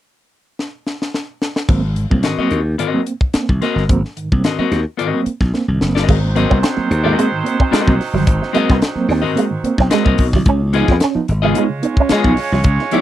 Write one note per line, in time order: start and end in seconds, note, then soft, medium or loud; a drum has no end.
0.59 snare medium
0.87 snare medium
1.02 snare medium
1.14 snare medium
1.42 snare medium
1.56 snare medium
1.69 2.05 G#1 medium
1.69 1.80 F#3 medium
1.69 1.80 A#3 medium
1.69 1.80 C4 medium
1.69 kick loud
1.69 crash medium
1.96 2.08 G#2 soft
1.96 2.08 D#3 soft
1.96 closed hi-hat medium
2.10 2.22 C2 medium
2.10 2.20 F#3 medium
2.10 2.21 A#3 medium
2.10 2.21 C4 medium
2.10 kick medium
2.23 2.35 G#2 medium
2.23 2.35 D#3 medium
2.23 2.39 C4 medium
2.23 2.39 F#4 medium
2.23 2.38 A#4 medium
2.23 2.37 D#5 medium
2.23 snare medium
2.23 closed hi-hat medium
2.38 2.48 F#3 medium
2.38 2.49 A#3 medium
2.38 2.49 C4 medium
2.38 2.60 C4 medium
2.38 2.60 F#4 medium
2.38 2.59 A#4 medium
2.38 2.59 D#5 medium
2.38 muted slap bass stroke soft
2.51 2.75 D#2 medium
2.51 closed hi-hat medium
2.78 2.90 G#2 medium
2.78 2.90 D#3 medium
2.78 3.00 C4 medium
2.78 3.00 F#4 medium
2.78 3.01 A#4 medium
2.78 3.01 D#5 medium
2.78 closed hi-hat medium
2.94 3.04 F#3 medium
2.94 3.04 A#3 medium
2.94 3.04 C4 medium
3.06 3.12 A#3 soft
3.06 3.12 C4 soft
3.06 closed hi-hat medium
3.21 kick medium
3.34 3.45 A#3 medium
3.34 3.45 C4 medium
3.34 muted slap bass stroke soft
3.34 snare loud
3.34 closed hi-hat loud
3.49 3.60 C2 medium
3.49 3.59 G#2 medium
3.49 3.59 D#3 medium
3.49 kick medium
3.62 3.73 A#3 medium
3.62 3.83 C4 medium
3.62 3.73 C4 medium
3.62 3.83 F#4 medium
3.62 3.83 A#4 medium
3.62 3.84 D#5 medium
3.62 snare soft
3.62 closed hi-hat medium
3.76 3.87 G1 medium
3.76 snare soft
3.89 4.02 G#1 medium
3.89 4.00 F#3 medium
3.89 4.00 A#3 medium
3.89 4.01 C4 medium
3.89 kick loud
3.89 closed hi-hat medium
4.05 snare soft
4.17 4.28 G#2 medium
4.17 4.28 D#3 medium
4.17 closed hi-hat medium
4.32 4.43 C2 medium
4.32 4.41 F#3 medium
4.32 4.41 A#3 medium
4.32 4.42 C4 medium
4.32 kick medium
4.44 4.55 G#2 medium
4.44 4.55 D#3 medium
4.44 4.59 C4 medium
4.44 4.59 F#4 medium
4.44 4.58 A#4 medium
4.44 4.58 D#5 medium
4.44 snare loud
4.44 closed hi-hat medium
4.59 4.69 F#3 medium
4.59 4.69 A#3 medium
4.59 4.69 C4 medium
4.59 4.80 C4 medium
4.59 4.80 F#4 medium
4.59 4.79 A#4 medium
4.59 4.79 D#5 medium
4.59 muted slap bass stroke soft
4.71 4.84 D#2 medium
4.71 4.78 A#3 soft
4.71 4.78 C4 soft
4.71 snare soft
4.71 closed hi-hat medium
4.97 5.11 G#2 medium
4.97 5.11 D#3 medium
4.97 5.19 C4 medium
4.97 5.20 F#4 medium
4.97 5.20 A#4 medium
4.97 5.20 D#5 medium
4.97 closed hi-hat medium
5.14 5.24 F#3 medium
5.14 5.24 A#3 medium
5.14 5.24 C4 medium
5.26 5.32 A#3 soft
5.26 5.32 C4 soft
5.26 muted slap bass stroke soft
5.26 closed hi-hat medium
5.40 5.52 B1 medium
5.40 kick medium
5.40 snare soft
5.54 5.65 A#3 medium
5.54 5.65 C4 medium
5.54 snare medium
5.68 5.79 C2 medium
5.68 5.78 G#2 medium
5.68 5.78 D#3 medium
5.81 5.96 F#1 medium
5.81 5.92 A#3 medium
5.81 5.92 C4 medium
5.81 snare medium
5.95 6.07 G1 medium
5.95 6.17 C4 medium
5.95 6.17 F#4 medium
5.95 6.16 A#4 medium
5.95 6.16 D#5 medium
5.95 snare medium
6.08 6.45 G#1 loud
6.08 6.20 G#2 medium
6.08 6.20 D#3 medium
6.08 10.15 F#3 medium
6.08 6.21 G#3 medium
6.08 10.15 C4 medium
6.08 10.15 D#4 medium
6.08 10.15 C5 medium
6.08 kick loud
6.08 crash medium
6.23 6.28 A#3 soft
6.23 6.28 C4 soft
6.35 6.46 F#3 medium
6.35 6.47 A#3 medium
6.35 6.47 C4 medium
6.35 6.57 C4 medium
6.35 6.57 F#4 medium
6.35 6.58 A#4 medium
6.35 6.58 D#5 loud
6.35 muted clean electric guitar stroke soft
6.35 closed hi-hat medium
6.50 6.62 C2 medium
6.50 6.61 B3 medium
6.50 kick medium
6.63 6.75 C4 medium
6.63 snare loud
6.63 closed hi-hat medium
6.77 6.87 F#3 medium
6.77 6.87 A#3 medium
6.77 6.87 C4 medium
6.77 muted slap bass stroke soft
6.91 7.14 D#2 medium
6.91 muted clean electric guitar stroke soft
6.91 closed hi-hat medium
7.04 7.15 G#2 medium
7.04 7.15 D#3 medium
7.04 7.16 G#3 medium
7.04 7.26 C4 medium
7.04 7.25 F#4 medium
7.04 7.25 A#4 medium
7.04 7.25 D#5 medium
7.17 7.31 G#3 medium
7.17 7.29 A#3 medium
7.17 7.29 C4 medium
7.17 closed hi-hat medium
7.32 7.42 G#2 medium
7.32 7.42 D#3 medium
7.44 7.56 A#3 medium
7.44 7.56 C4 medium
7.44 muted clean electric guitar stroke soft
7.44 closed hi-hat medium
7.60 7.71 C4 medium
7.60 kick medium
7.71 7.85 G#3 medium
7.71 7.93 C4 medium
7.71 7.94 F#4 medium
7.71 7.94 A#4 medium
7.71 7.94 D#5 medium
7.71 muted slap bass stroke soft
7.71 snare loud
7.71 closed hi-hat medium
7.87 7.99 C2 medium
7.87 7.97 F#3 medium
7.87 7.97 A#3 medium
7.87 7.97 C4 medium
7.87 kick loud
8.00 muted clean electric guitar stroke soft
8.00 snare soft
8.00 open hi-hat medium
8.13 8.25 G1 medium
8.13 8.24 G#2 medium
8.13 8.24 D#3 medium
8.13 8.26 F#3 medium
8.13 snare soft
8.27 8.40 G#1 loud
8.27 8.39 G#2 medium
8.27 8.38 D#3 medium
8.27 kick loud
8.27 closed hi-hat medium
8.42 8.47 A#3 soft
8.42 8.47 C4 soft
8.42 muted clean electric guitar stroke soft
8.42 snare soft
8.53 8.66 F#3 medium
8.53 8.68 G#3 medium
8.53 8.66 A#3 medium
8.53 8.75 C4 medium
8.53 8.66 C4 medium
8.53 8.76 F#4 medium
8.53 8.76 A#4 loud
8.53 8.76 D#5 loud
8.53 closed hi-hat medium
8.70 8.81 C2 medium
8.70 8.81 B3 medium
8.70 kick medium
8.70 snare soft
8.82 snare loud
8.82 closed hi-hat medium
8.96 9.06 F#3 medium
8.96 9.06 A#3 medium
8.96 9.06 C4 medium
8.96 muted slap bass stroke soft
9.09 9.21 D#2 medium
9.09 9.22 C4 medium
9.09 snare soft
9.09 open hi-hat soft
9.22 9.34 G#2 medium
9.22 9.34 D#3 medium
9.22 9.44 C4 medium
9.22 9.44 F#4 medium
9.22 9.44 A#4 medium
9.22 9.43 D#5 medium
9.35 9.50 G#3 medium
9.35 9.47 A#3 medium
9.35 9.48 C4 medium
9.35 closed hi-hat medium
9.50 9.61 G#2 medium
9.50 9.61 D#3 medium
9.63 9.75 A#3 medium
9.63 9.75 C4 medium
9.63 muted slap bass stroke soft
9.63 muted clean electric guitar stroke soft
9.63 closed hi-hat medium
9.78 9.89 B1 loud
9.78 9.90 C4 medium
9.78 kick medium
9.78 snare soft
9.90 10.05 G#3 medium
9.90 10.05 C4 medium
9.90 10.04 F#4 medium
9.90 10.04 A#4 medium
9.90 10.03 D#5 medium
9.90 snare loud
9.90 closed hi-hat loud
10.05 10.17 C2 medium
10.05 10.15 F#3 medium
10.05 10.16 A#3 medium
10.05 10.16 C4 medium
10.05 10.27 C4 medium
10.05 10.26 F#4 medium
10.05 10.26 A#4 medium
10.05 10.26 D#5 medium
10.05 muted clean electric guitar stroke soft
10.05 kick medium
10.18 10.33 B1 medium
10.18 kick medium
10.18 open hi-hat medium
10.33 10.44 C2 medium
10.33 10.43 G#2 medium
10.33 10.43 D#3 medium
10.33 10.46 F#3 medium
10.33 kick medium
10.33 snare soft
10.45 10.82 C#2 loud
10.45 10.57 C#3 medium
10.45 10.60 C#4 medium
10.45 kick loud
10.45 closed hi-hat medium
10.60 10.66 B3 soft
10.60 10.66 D#4 soft
10.73 10.85 F3 medium
10.73 10.95 B3 medium
10.73 10.85 B3 medium
10.73 10.85 D#4 medium
10.73 10.95 F4 medium
10.73 10.95 G#4 medium
10.73 10.96 D#5 medium
10.73 muted clean electric guitar stroke soft
10.73 closed hi-hat medium
10.88 10.99 F2 loud
10.88 11.01 B3 medium
10.88 kick medium
10.88 snare soft
11.00 11.15 C#4 medium
11.00 snare loud
11.00 closed hi-hat medium
11.15 11.25 F3 medium
11.15 11.25 B3 medium
11.15 11.25 D#4 medium
11.15 muted slap bass stroke soft
11.28 11.52 G#1 medium
11.28 muted clean electric guitar stroke soft
11.28 closed hi-hat medium
11.42 11.52 C#3 medium
11.42 11.55 G#3 medium
11.42 11.63 B3 medium
11.42 11.63 F4 medium
11.42 11.63 G#4 medium
11.42 11.63 D#5 medium
11.54 13.01 G#3 medium
11.54 11.69 G#3 medium
11.54 11.66 B3 medium
11.54 13.01 C#4 medium
11.54 11.66 D#4 medium
11.54 13.01 F4 medium
11.54 13.01 C#5 medium
11.54 closed hi-hat medium
11.69 11.80 C#3 medium
11.83 11.94 B3 medium
11.83 11.94 D#4 medium
11.83 muted clean electric guitar stroke soft
11.83 closed hi-hat medium
11.97 12.10 C#4 medium
11.97 kick medium
12.09 12.24 G#3 medium
12.09 12.31 B3 medium
12.09 12.32 F4 medium
12.09 12.32 G#4 medium
12.09 12.32 D#5 medium
12.09 muted slap bass stroke medium
12.09 snare loud
12.09 closed hi-hat loud
12.24 12.35 B1 medium
12.24 12.34 F3 medium
12.24 12.34 B3 medium
12.24 12.35 D#4 medium
12.24 kick medium
12.37 muted clean electric guitar stroke soft
12.37 snare soft
12.37 open hi-hat medium
12.52 12.63 C2 medium
12.52 12.62 C#3 medium
12.52 12.64 F3 medium
12.52 snare soft
12.64 12.77 C#2 loud
12.64 12.76 C#3 medium
12.64 kick loud
12.64 closed hi-hat loud
12.79 12.84 B3 soft
12.79 12.84 D#4 soft
12.79 muted clean electric guitar stroke soft
12.79 snare soft
12.91 13.01 F3 medium
12.91 13.01 G#3 medium
12.91 13.01 B3 medium
12.91 13.01 D#4 medium
12.91 13.01 F4 medium
12.91 13.01 G#4 medium
12.91 13.01 D#5 medium
12.91 closed hi-hat medium